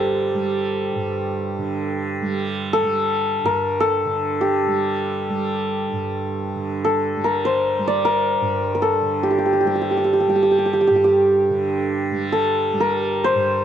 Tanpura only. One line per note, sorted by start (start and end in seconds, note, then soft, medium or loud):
0.00 0.95 G2 medium
0.00 1.58 D3 soft
0.00 0.34 G3 medium
0.34 2.22 G3 medium
0.95 3.43 G2 medium
1.59 4.05 D3 medium
2.22 2.83 G3 medium
2.83 4.67 G3 medium
3.44 5.92 G2 medium
4.05 6.55 D3 medium
4.67 5.29 G3 medium
5.29 7.17 G3 medium
5.93 8.41 G2 medium
6.55 9.02 D3 soft
7.17 7.79 G3 medium
7.79 9.64 G3 medium
8.41 10.90 G2 medium
9.02 11.50 D3 medium
9.64 10.27 G3 medium
10.27 12.12 G3 medium
10.90 13.35 G2 medium
11.50 13.64 D3 medium
12.12 12.73 G3 medium
12.73 13.64 G3 medium
13.35 13.64 G2 medium